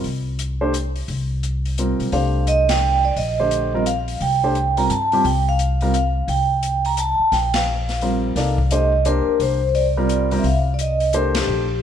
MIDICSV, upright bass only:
0, 0, Header, 1, 3, 480
1, 0, Start_track
1, 0, Tempo, 346620
1, 58, Time_signature, 3, 2, 24, 8
1, 16368, End_track
2, 0, Start_track
2, 0, Title_t, "Upright bass"
2, 0, Program_c, 0, 32
2, 58, Note_on_c, 0, 36, 71
2, 1445, Note_off_c, 0, 36, 0
2, 1497, Note_on_c, 0, 36, 80
2, 2709, Note_off_c, 0, 36, 0
2, 2760, Note_on_c, 0, 35, 63
2, 2928, Note_off_c, 0, 35, 0
2, 2940, Note_on_c, 0, 36, 82
2, 4328, Note_off_c, 0, 36, 0
2, 4381, Note_on_c, 0, 34, 77
2, 5769, Note_off_c, 0, 34, 0
2, 5825, Note_on_c, 0, 36, 80
2, 6731, Note_off_c, 0, 36, 0
2, 6779, Note_on_c, 0, 43, 74
2, 7229, Note_off_c, 0, 43, 0
2, 7258, Note_on_c, 0, 36, 86
2, 8647, Note_off_c, 0, 36, 0
2, 8691, Note_on_c, 0, 36, 78
2, 9906, Note_off_c, 0, 36, 0
2, 10134, Note_on_c, 0, 34, 79
2, 11523, Note_off_c, 0, 34, 0
2, 11571, Note_on_c, 0, 36, 81
2, 12784, Note_off_c, 0, 36, 0
2, 13010, Note_on_c, 0, 36, 75
2, 14399, Note_off_c, 0, 36, 0
2, 14448, Note_on_c, 0, 36, 84
2, 15837, Note_off_c, 0, 36, 0
2, 15884, Note_on_c, 0, 34, 78
2, 16368, Note_off_c, 0, 34, 0
2, 16368, End_track
3, 0, Start_track
3, 0, Title_t, "Muted upright bass strokes"
3, 9962, Note_on_c, 9, 29, 35
3, 10101, Note_off_c, 9, 29, 0
3, 12829, Note_on_c, 9, 29, 32
3, 12967, Note_off_c, 9, 29, 0
3, 16368, End_track
0, 0, End_of_file